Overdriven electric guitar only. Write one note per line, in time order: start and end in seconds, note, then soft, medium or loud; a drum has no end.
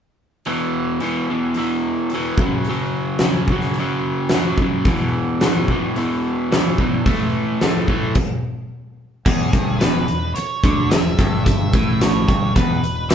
0.47 0.99 E2 medium
0.47 1.00 B2 medium
0.47 1.01 E3 medium
1.01 1.29 E2 medium
1.01 1.29 B2 medium
1.01 1.29 E3 medium
1.30 1.55 E2 medium
1.30 1.57 B2 medium
1.30 1.57 E3 medium
1.56 2.12 E2 medium
1.56 2.13 B2 medium
1.56 2.13 E3 medium
2.13 2.38 E2 medium
2.13 2.38 B2 medium
2.13 2.38 E3 medium
2.40 2.68 F#2 medium
2.40 2.69 C#3 medium
2.40 2.68 F#3 medium
2.69 3.22 F#2 medium
2.69 3.23 C#3 medium
2.69 3.23 F#3 medium
3.24 3.49 F#2 medium
3.24 3.50 C#3 medium
3.24 3.51 F#3 medium
3.50 3.78 F#2 medium
3.50 3.78 C#3 medium
3.50 3.79 F#3 medium
3.79 4.32 F#2 medium
3.79 4.33 C#3 medium
3.79 4.34 F#3 medium
4.34 4.60 F#2 medium
4.34 4.60 C#3 medium
4.34 4.61 F#3 medium
4.61 4.86 F#2 medium
4.61 4.86 C#3 medium
4.61 4.86 F#3 medium
4.87 5.41 E2 medium
4.87 5.41 B2 medium
4.87 5.43 E3 medium
5.42 5.68 E2 medium
5.42 5.69 B2 medium
5.42 5.70 E3 medium
5.70 5.96 E2 medium
5.70 5.96 B2 medium
5.70 5.96 E3 medium
5.97 6.50 E2 medium
5.97 6.50 B2 medium
5.97 6.51 E3 medium
6.51 6.78 E2 medium
6.51 6.79 B2 medium
6.51 6.79 E3 medium
6.79 7.05 E2 medium
6.79 7.05 B2 medium
6.79 7.05 E3 medium
7.05 7.60 A2 medium
7.05 7.61 E3 medium
7.05 7.61 A3 medium
7.62 7.88 A2 medium
7.62 7.88 E3 medium
7.62 7.89 A3 medium
7.89 8.15 A2 medium
7.89 8.15 E3 medium
7.89 8.15 A3 medium
9.27 9.53 E2 medium
9.53 9.80 G2 medium
9.81 10.08 E2 medium
10.09 10.31 E2 medium
10.38 muted overdriven electric guitar stroke medium
10.66 10.92 D3 medium
10.91 11.13 E2 medium
11.20 11.74 G2 medium
11.75 12.29 A2 medium
12.28 12.55 G2 medium
12.56 12.83 E2 loud
12.84 13.06 E2 medium
13.11 13.15 B2 medium